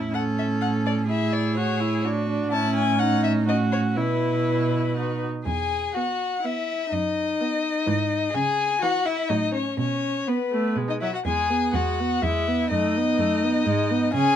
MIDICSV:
0, 0, Header, 1, 5, 480
1, 0, Start_track
1, 0, Key_signature, 4, "major"
1, 0, Tempo, 475436
1, 1101, Time_signature, 3, 2, 24, 8
1, 3014, Tempo, 493827
1, 6374, Tempo, 476190
1, 9254, Tempo, 483481
1, 14277, End_track
2, 0, Start_track
2, 0, Title_t, "Violin"
2, 0, Program_c, 0, 40
2, 141, Note_on_c, 0, 78, 52
2, 222, Note_off_c, 0, 78, 0
2, 388, Note_on_c, 0, 76, 41
2, 468, Note_off_c, 0, 76, 0
2, 619, Note_on_c, 0, 78, 48
2, 699, Note_off_c, 0, 78, 0
2, 868, Note_on_c, 0, 74, 44
2, 949, Note_off_c, 0, 74, 0
2, 1109, Note_on_c, 0, 76, 53
2, 1341, Note_on_c, 0, 74, 48
2, 1356, Note_off_c, 0, 76, 0
2, 1584, Note_off_c, 0, 74, 0
2, 1590, Note_on_c, 0, 73, 50
2, 2055, Note_off_c, 0, 73, 0
2, 2543, Note_on_c, 0, 81, 72
2, 2762, Note_off_c, 0, 81, 0
2, 2777, Note_on_c, 0, 80, 70
2, 3021, Note_on_c, 0, 78, 68
2, 3036, Note_off_c, 0, 80, 0
2, 3251, Note_off_c, 0, 78, 0
2, 3256, Note_on_c, 0, 76, 68
2, 3334, Note_off_c, 0, 76, 0
2, 3502, Note_on_c, 0, 75, 59
2, 3580, Note_off_c, 0, 75, 0
2, 3730, Note_on_c, 0, 73, 48
2, 3808, Note_off_c, 0, 73, 0
2, 3973, Note_on_c, 0, 71, 50
2, 5167, Note_off_c, 0, 71, 0
2, 5421, Note_on_c, 0, 80, 47
2, 5865, Note_off_c, 0, 80, 0
2, 5888, Note_on_c, 0, 78, 49
2, 6379, Note_on_c, 0, 76, 54
2, 6394, Note_off_c, 0, 78, 0
2, 6859, Note_on_c, 0, 75, 59
2, 6874, Note_off_c, 0, 76, 0
2, 8290, Note_on_c, 0, 80, 73
2, 8305, Note_off_c, 0, 75, 0
2, 8771, Note_on_c, 0, 78, 65
2, 8786, Note_off_c, 0, 80, 0
2, 9008, Note_on_c, 0, 76, 60
2, 9023, Note_off_c, 0, 78, 0
2, 9245, Note_on_c, 0, 75, 59
2, 9260, Note_off_c, 0, 76, 0
2, 9482, Note_off_c, 0, 75, 0
2, 9488, Note_on_c, 0, 73, 48
2, 9729, Note_off_c, 0, 73, 0
2, 9741, Note_on_c, 0, 73, 53
2, 10229, Note_on_c, 0, 71, 44
2, 10244, Note_off_c, 0, 73, 0
2, 10711, Note_off_c, 0, 71, 0
2, 10842, Note_on_c, 0, 75, 42
2, 10888, Note_off_c, 0, 75, 0
2, 10958, Note_on_c, 0, 76, 43
2, 11076, Note_off_c, 0, 76, 0
2, 11090, Note_on_c, 0, 78, 48
2, 11136, Note_off_c, 0, 78, 0
2, 11197, Note_on_c, 0, 80, 58
2, 11665, Note_off_c, 0, 80, 0
2, 11671, Note_on_c, 0, 78, 54
2, 12151, Note_on_c, 0, 76, 57
2, 12166, Note_off_c, 0, 78, 0
2, 12628, Note_off_c, 0, 76, 0
2, 12634, Note_on_c, 0, 75, 63
2, 14029, Note_off_c, 0, 75, 0
2, 14051, Note_on_c, 0, 80, 80
2, 14277, Note_off_c, 0, 80, 0
2, 14277, End_track
3, 0, Start_track
3, 0, Title_t, "Violin"
3, 0, Program_c, 1, 40
3, 0, Note_on_c, 1, 64, 36
3, 139, Note_on_c, 1, 69, 39
3, 154, Note_off_c, 1, 64, 0
3, 1095, Note_off_c, 1, 69, 0
3, 1101, Note_on_c, 1, 68, 37
3, 2065, Note_on_c, 1, 66, 44
3, 2080, Note_off_c, 1, 68, 0
3, 2534, Note_off_c, 1, 66, 0
3, 2540, Note_on_c, 1, 64, 48
3, 3007, Note_off_c, 1, 64, 0
3, 3019, Note_on_c, 1, 63, 50
3, 3494, Note_on_c, 1, 61, 43
3, 3508, Note_off_c, 1, 63, 0
3, 3978, Note_on_c, 1, 64, 39
3, 3992, Note_off_c, 1, 61, 0
3, 4932, Note_off_c, 1, 64, 0
3, 4938, Note_on_c, 1, 66, 27
3, 5222, Note_off_c, 1, 66, 0
3, 5415, Note_on_c, 1, 68, 47
3, 5891, Note_on_c, 1, 66, 43
3, 5906, Note_off_c, 1, 68, 0
3, 6353, Note_off_c, 1, 66, 0
3, 6359, Note_on_c, 1, 64, 39
3, 6842, Note_off_c, 1, 64, 0
3, 6850, Note_on_c, 1, 63, 52
3, 8258, Note_off_c, 1, 63, 0
3, 8271, Note_on_c, 1, 68, 66
3, 8751, Note_off_c, 1, 68, 0
3, 8763, Note_on_c, 1, 66, 62
3, 9006, Note_on_c, 1, 64, 54
3, 9021, Note_off_c, 1, 66, 0
3, 9246, Note_on_c, 1, 63, 49
3, 9261, Note_off_c, 1, 64, 0
3, 9476, Note_on_c, 1, 61, 43
3, 9491, Note_off_c, 1, 63, 0
3, 9728, Note_off_c, 1, 61, 0
3, 9741, Note_on_c, 1, 61, 51
3, 10222, Note_on_c, 1, 59, 40
3, 10237, Note_off_c, 1, 61, 0
3, 10707, Note_off_c, 1, 59, 0
3, 10822, Note_on_c, 1, 63, 42
3, 10873, Note_off_c, 1, 63, 0
3, 10951, Note_on_c, 1, 64, 37
3, 11064, Note_off_c, 1, 64, 0
3, 11070, Note_on_c, 1, 66, 38
3, 11120, Note_off_c, 1, 66, 0
3, 11200, Note_on_c, 1, 68, 51
3, 11682, Note_on_c, 1, 66, 49
3, 11697, Note_off_c, 1, 68, 0
3, 12171, Note_on_c, 1, 64, 45
3, 12186, Note_off_c, 1, 66, 0
3, 12635, Note_off_c, 1, 64, 0
3, 12641, Note_on_c, 1, 63, 60
3, 14033, Note_off_c, 1, 63, 0
3, 14063, Note_on_c, 1, 68, 73
3, 14277, Note_off_c, 1, 68, 0
3, 14277, End_track
4, 0, Start_track
4, 0, Title_t, "Viola"
4, 0, Program_c, 2, 41
4, 135, Note_on_c, 2, 61, 37
4, 1082, Note_off_c, 2, 61, 0
4, 1104, Note_on_c, 2, 64, 37
4, 1586, Note_on_c, 2, 66, 40
4, 1602, Note_off_c, 2, 64, 0
4, 1821, Note_on_c, 2, 64, 45
4, 1836, Note_off_c, 2, 66, 0
4, 2067, Note_on_c, 2, 62, 49
4, 2082, Note_off_c, 2, 64, 0
4, 2302, Note_off_c, 2, 62, 0
4, 2308, Note_on_c, 2, 62, 47
4, 2550, Note_on_c, 2, 61, 50
4, 2565, Note_off_c, 2, 62, 0
4, 3477, Note_off_c, 2, 61, 0
4, 3483, Note_on_c, 2, 66, 43
4, 3970, Note_on_c, 2, 64, 37
4, 3985, Note_off_c, 2, 66, 0
4, 4940, Note_on_c, 2, 63, 31
4, 4954, Note_off_c, 2, 64, 0
4, 5229, Note_off_c, 2, 63, 0
4, 5904, Note_on_c, 2, 59, 35
4, 6256, Note_off_c, 2, 59, 0
4, 6374, Note_on_c, 2, 59, 36
4, 6735, Note_off_c, 2, 59, 0
4, 7343, Note_on_c, 2, 59, 45
4, 7696, Note_off_c, 2, 59, 0
4, 7809, Note_on_c, 2, 52, 48
4, 8166, Note_off_c, 2, 52, 0
4, 8775, Note_on_c, 2, 52, 48
4, 9133, Note_off_c, 2, 52, 0
4, 9253, Note_on_c, 2, 54, 47
4, 9613, Note_off_c, 2, 54, 0
4, 10224, Note_on_c, 2, 59, 43
4, 10303, Note_off_c, 2, 59, 0
4, 10461, Note_on_c, 2, 57, 41
4, 10709, Note_on_c, 2, 56, 37
4, 10724, Note_off_c, 2, 57, 0
4, 10953, Note_off_c, 2, 56, 0
4, 10958, Note_on_c, 2, 54, 33
4, 11038, Note_off_c, 2, 54, 0
4, 11202, Note_on_c, 2, 56, 37
4, 11434, Note_on_c, 2, 59, 33
4, 11449, Note_off_c, 2, 56, 0
4, 11675, Note_on_c, 2, 56, 35
4, 11689, Note_off_c, 2, 59, 0
4, 11934, Note_on_c, 2, 59, 31
4, 11949, Note_off_c, 2, 56, 0
4, 12164, Note_off_c, 2, 59, 0
4, 12170, Note_on_c, 2, 56, 36
4, 12407, Note_on_c, 2, 59, 34
4, 12422, Note_off_c, 2, 56, 0
4, 12643, Note_off_c, 2, 59, 0
4, 12657, Note_on_c, 2, 57, 40
4, 12891, Note_on_c, 2, 59, 39
4, 12906, Note_off_c, 2, 57, 0
4, 13123, Note_on_c, 2, 57, 40
4, 13138, Note_off_c, 2, 59, 0
4, 13359, Note_on_c, 2, 59, 42
4, 13373, Note_off_c, 2, 57, 0
4, 13587, Note_off_c, 2, 59, 0
4, 13593, Note_on_c, 2, 56, 47
4, 13824, Note_on_c, 2, 59, 47
4, 13839, Note_off_c, 2, 56, 0
4, 14045, Note_off_c, 2, 59, 0
4, 14051, Note_on_c, 2, 61, 54
4, 14277, Note_off_c, 2, 61, 0
4, 14277, End_track
5, 0, Start_track
5, 0, Title_t, "Cello"
5, 0, Program_c, 3, 42
5, 0, Note_on_c, 3, 45, 35
5, 2497, Note_off_c, 3, 45, 0
5, 2538, Note_on_c, 3, 45, 51
5, 3963, Note_on_c, 3, 47, 41
5, 3977, Note_off_c, 3, 45, 0
5, 5228, Note_off_c, 3, 47, 0
5, 5422, Note_on_c, 3, 40, 41
5, 5799, Note_off_c, 3, 40, 0
5, 6853, Note_on_c, 3, 42, 47
5, 7236, Note_off_c, 3, 42, 0
5, 7813, Note_on_c, 3, 44, 58
5, 8191, Note_off_c, 3, 44, 0
5, 8291, Note_on_c, 3, 49, 57
5, 8670, Note_off_c, 3, 49, 0
5, 9249, Note_on_c, 3, 45, 55
5, 9633, Note_off_c, 3, 45, 0
5, 9727, Note_on_c, 3, 47, 45
5, 10117, Note_off_c, 3, 47, 0
5, 10703, Note_on_c, 3, 47, 44
5, 11093, Note_off_c, 3, 47, 0
5, 11193, Note_on_c, 3, 40, 45
5, 11599, Note_off_c, 3, 40, 0
5, 11673, Note_on_c, 3, 40, 47
5, 12077, Note_off_c, 3, 40, 0
5, 12159, Note_on_c, 3, 40, 50
5, 12561, Note_off_c, 3, 40, 0
5, 12637, Note_on_c, 3, 42, 54
5, 13038, Note_off_c, 3, 42, 0
5, 13111, Note_on_c, 3, 42, 55
5, 13509, Note_off_c, 3, 42, 0
5, 13585, Note_on_c, 3, 44, 61
5, 13981, Note_off_c, 3, 44, 0
5, 14057, Note_on_c, 3, 49, 69
5, 14277, Note_off_c, 3, 49, 0
5, 14277, End_track
0, 0, End_of_file